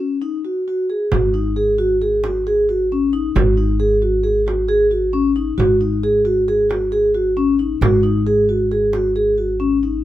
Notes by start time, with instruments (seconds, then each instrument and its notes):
0.00 vibraphone C#4
0.22 vibraphone D#4
0.45 vibraphone F#4
0.68 vibraphone F#4
0.90 vibraphone G#4
1.12 upright bass G#1, vibraphone F#4, frame drum
1.34 vibraphone D#4
1.56 vibraphone G#4
1.78 vibraphone F#4
2.01 vibraphone G#4, frame drum
2.24 vibraphone F#4, frame drum
2.47 vibraphone G#4
2.69 vibraphone F#4
2.92 vibraphone C#4
3.13 vibraphone D#4
3.35 upright bass G#1, vibraphone F#4, frame drum
3.57 vibraphone D#4
3.80 vibraphone G#4
4.02 vibraphone F#4
4.24 vibraphone G#4, frame drum
4.46 vibraphone F#4, frame drum
4.69 vibraphone G#4
4.91 vibraphone F#4
5.13 vibraphone C#4
5.36 vibraphone D#4
5.58 upright bass G#1, vibraphone F#4, frame drum
5.81 vibraphone D#4
6.03 vibraphone G#4
6.25 vibraphone F#4
6.48 vibraphone G#4, frame drum
6.70 vibraphone F#4, frame drum
6.92 vibraphone G#4
7.14 vibraphone F#4
7.37 vibraphone C#4
7.59 vibraphone D#4
7.81 upright bass G#1, vibraphone F#4, frame drum
8.03 vibraphone D#4, frame drum
8.27 vibraphone G#4
8.49 vibraphone F#4
8.71 vibraphone G#4, frame drum
8.93 vibraphone F#4, frame drum
9.16 vibraphone G#4
9.38 vibraphone F#4
9.60 vibraphone C#4
9.83 vibraphone D#4